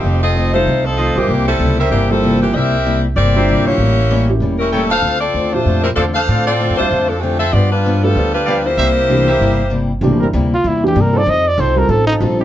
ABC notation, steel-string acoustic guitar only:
X:1
M:4/4
L:1/8
Q:"Swing" 1/4=192
K:Cmix
V:1 name="Steel-string acoustic guitar"
[F,,_E,A,C] z [F,,E,A,C] z [F,,E,A,C] z [F,,E,A,C] z | [C,G,B,E] z [C,G,B,E] z [C,G,B,E] z [C,G,B,E] z | [C,G,B,E] z [C,G,B,E] z [C,G,B,E] z [C,G,B,E] z | [A,,G,B,^C] z [A,,G,B,C] z [A,,G,B,C] z [A,,G,B,C] z |
[D,A,CF] z [D,A,CF] z [D,A,CF] z [D,A,CF] z | [D,A,CF] z [D,A,CF] z [D,A,CF] z [D,A,CF] z | [G,,F,=B,D] z [G,,F,B,D] z [G,,F,B,D] z [G,,F,B,D] z | [C,G,B,E] z [C,G,B,E] z [C,G,B,E] z [C,G,B,E] z |
[C,G,B,E] z [C,G,B,E] z [C,G,B,E] z [C,G,B,E] z | [F,C_EA] z [F,CEA] z [F,CEA] z [F,CEA] z |]